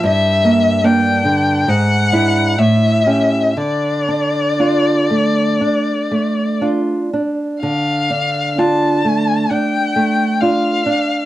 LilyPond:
<<
  \new Staff \with { instrumentName = "Violin" } { \time 4/4 \key d \minor \tempo 4 = 64 e''4 g''4 fis''4 e''4 | d''2. r4 | f''4 a''4 g''4 f''4 | }
  \new Staff \with { instrumentName = "Nylon-string guitar" } { \time 4/4 \key d \minor g,8 bes8 <bes d'>8 d8 gis,8 <d' e'>8 a,8 <cis' g'>8 | d8 d'8 <d' f'>8 a8 d'8 a8 <d' f'>8 d'8 | d8 d'8 <d' f'>8 a8 d'8 a8 <d' f'>8 d'8 | }
>>